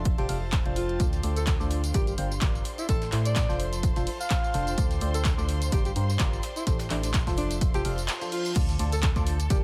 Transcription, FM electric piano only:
0.00 0.15 F3 medium
0.00 0.15 D4 medium
0.00 0.15 F4 medium
0.00 0.15 A4 medium
0.00 0.15 C5 loud
0.18 0.27 F3 medium
0.18 0.27 D4 medium
0.18 0.27 F4 medium
0.18 0.27 A4 medium
0.18 0.27 C5 loud
0.29 0.44 F3 medium
0.29 0.44 D4 medium
0.29 0.44 F4 medium
0.29 0.44 A4 medium
0.29 0.44 F5 medium
0.66 0.97 F3 medium
0.66 0.97 D4 medium
0.66 0.97 F4 medium
0.66 0.97 A4 medium
0.66 0.97 C5 medium
1.00 1.21 D3 medium
1.00 1.21 F4 medium
1.00 1.21 A4 medium
1.00 1.21 C5 medium
1.00 1.21 D5 medium
1.23 1.38 D3 medium
1.23 1.38 F4 medium
1.23 1.38 A4 medium
1.23 1.38 C5 medium
1.23 1.38 D5 medium
1.60 1.82 D3 loud
1.60 1.82 F4 medium
1.60 1.82 A4 medium
1.60 1.82 C5 medium
1.60 1.82 D5 loud
1.94 2.15 G3 medium
1.94 2.15 F4 medium
1.94 2.15 G4 medium
1.94 2.15 A#4 medium
1.94 2.15 D5 medium
2.18 2.33 G3 medium
2.18 2.33 F4 medium
2.18 2.33 G4 medium
2.18 2.33 A#4 medium
2.18 2.33 C5 medium
2.42 2.64 F4 medium
2.42 2.64 G4 medium
2.42 2.64 A#4 medium
2.42 2.64 D5 medium
2.89 3.10 A3 medium
2.89 3.10 E4 medium
2.89 3.10 G4 medium
2.89 3.10 A4 medium
2.89 3.10 C5 medium
3.12 3.46 A3 medium
3.12 3.46 E4 medium
3.12 3.46 G4 medium
3.12 3.46 A4 medium
3.12 3.46 C5 medium
3.49 3.93 F3 medium
3.49 3.93 D4 medium
3.49 3.93 F4 medium
3.49 3.93 A4 medium
3.49 3.93 C5 loud
3.96 4.09 F3 medium
3.96 4.09 D4 medium
3.96 4.09 F4 medium
3.96 4.09 A4 medium
3.96 4.09 C5 loud
4.54 4.75 D3 loud
4.54 4.75 D4 medium
4.54 4.75 F4 medium
4.54 4.75 A4 medium
4.54 4.75 C5 loud
4.78 4.99 D3 medium
4.78 4.99 F4 medium
4.78 4.99 A4 medium
4.78 4.99 C5 medium
4.78 4.99 D5 medium
5.01 5.16 D3 medium
5.01 5.16 F4 medium
5.01 5.16 A4 medium
5.01 5.16 C5 medium
5.01 5.16 D5 medium
5.38 5.60 D3 medium
5.38 5.60 F4 medium
5.38 5.60 A4 medium
5.38 5.60 C5 medium
5.38 5.60 D5 loud
5.72 5.93 G3 medium
5.72 5.93 F4 medium
5.72 5.93 G4 medium
5.72 5.93 A#4 medium
5.72 5.93 D5 medium
5.96 6.11 G3 medium
5.96 6.11 F4 medium
5.96 6.11 G4 medium
5.96 6.11 A#4 medium
5.96 6.11 C5 medium
6.20 6.42 F4 medium
6.20 6.42 G4 medium
6.20 6.42 A#4 medium
6.20 6.42 D5 loud
6.67 6.88 A3 medium
6.67 6.88 E4 medium
6.67 6.88 G4 medium
6.67 6.88 A4 medium
6.67 6.88 C5 medium
6.90 7.24 A3 medium
6.90 7.24 E4 medium
6.90 7.24 G4 medium
6.90 7.24 A4 medium
6.90 7.24 C5 medium
7.27 7.71 F3 medium
7.27 7.71 D4 medium
7.27 7.71 F4 medium
7.27 7.71 A4 medium
7.27 7.71 C5 loud
7.74 7.83 F3 loud
7.74 7.83 D4 medium
7.74 7.83 F4 medium
7.74 7.83 A4 medium
7.74 7.83 C5 loud
7.85 8.00 F3 medium
7.85 8.00 D4 medium
7.85 8.00 F4 medium
7.85 8.00 A4 medium
7.85 8.00 F5 medium
8.22 8.53 F3 medium
8.22 8.53 D4 medium
8.22 8.53 F4 medium
8.22 8.53 A4 medium
8.22 8.53 C5 medium
8.56 8.77 D3 medium
8.56 8.77 F4 medium
8.56 8.77 A4 medium
8.56 8.77 C5 medium
8.56 8.77 D5 medium
8.79 8.94 D3 medium
8.79 8.94 F4 medium
8.79 8.94 A4 medium
8.79 8.94 C5 medium
8.79 8.94 D5 medium
9.16 9.38 D3 medium
9.16 9.38 F4 medium
9.16 9.38 A4 medium
9.16 9.38 C5 medium
9.16 9.38 D5 loud
9.50 9.64 G3 medium
9.50 9.64 F4 medium
9.50 9.64 G4 medium
9.50 9.64 A#4 medium
9.50 9.64 D5 medium

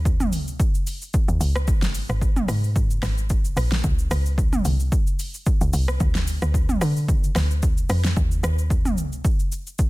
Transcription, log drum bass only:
0.00 0.34 D#2 loud
0.33 0.58 C#2 loud
1.28 1.40 D#2 medium
1.40 1.69 C#2 medium
1.68 2.07 G#1 loud
2.09 2.46 G#1 loud
2.48 2.99 G#2 loud
3.03 3.53 G#1 medium
3.56 3.82 A#1 medium
3.84 4.09 C#2 loud
4.11 4.61 C#2 medium
4.65 4.90 C2 medium
5.61 5.72 C#2 medium
5.73 5.98 C2 loud
6.00 6.39 D2 loud
6.42 6.78 D2 loud
6.82 7.32 D3 loud
7.35 7.85 D2 medium
7.89 8.14 F2 medium
8.17 8.42 D#2 loud
8.43 8.99 D#2 loud
8.98 9.23 C#2 loud

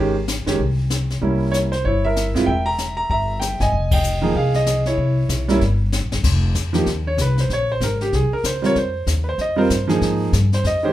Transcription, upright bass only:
0.00 0.43 G#1 medium
0.47 0.58 F#1 medium
0.59 1.19 C2 medium
1.22 1.81 C2 medium
1.84 2.31 G1 medium
2.35 2.46 G2 medium
2.47 3.07 E1 medium
3.10 3.57 G1 medium
3.60 3.71 G1 medium
3.72 4.32 F1 medium
4.35 4.95 C2 medium
4.97 5.27 C2 medium
5.29 5.58 B1 medium
5.60 5.99 G1 medium
6.02 6.12 A#1 medium
6.13 6.23 G1 medium
6.23 6.54 F1 medium
6.55 6.85 F2 medium
6.86 7.17 D#2 medium
7.17 7.48 C2 medium
7.49 7.80 A#1 medium
7.81 8.11 G#1 medium
8.12 8.30 C2 medium
8.31 muted upright bass stroke soft
8.44 8.74 C#2 medium
8.75 9.06 F2 medium
9.07 9.37 D#2 medium
9.38 9.69 F2 medium
9.70 10.00 G2 medium
10.01 10.32 G#2 medium
10.33 10.63 G2 medium
10.64 10.93 F2 medium

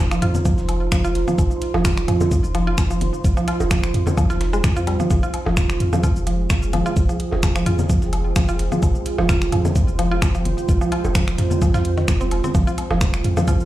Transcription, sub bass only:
0.00 0.19 F1 medium
0.22 0.55 F2 medium
0.58 0.89 F1 medium
0.92 1.24 F1 medium
1.38 1.49 F1 loud
1.74 2.05 F1 medium
2.08 2.41 F2 medium
2.44 2.75 F1 medium
2.78 3.10 F1 medium
3.24 3.35 F1 loud
3.60 3.91 F1 medium
3.94 4.27 F2 medium
4.30 4.61 F1 medium
4.64 4.97 F2 loud
5.10 5.21 F1 loud
5.46 5.77 F1 medium
5.80 6.13 F2 medium
6.16 6.47 F1 medium
6.50 6.83 F1 medium
6.96 7.07 F1 loud
7.32 7.63 F1 medium
7.66 7.99 F2 medium
8.02 8.33 F1 medium
8.36 8.69 F1 medium
8.83 8.93 F1 loud
9.18 9.50 F1 medium
9.52 9.85 F2 medium
9.88 10.19 F1 medium
10.22 10.55 F1 medium
10.69 10.79 F1 loud
11.04 11.36 F1 medium
11.38 11.71 F2 medium
11.74 12.05 F2 medium
12.08 12.41 F1 medium
12.55 12.65 F1 loud
12.90 13.22 F1 medium
13.24 13.57 F2 medium
13.60 13.65 F1 medium

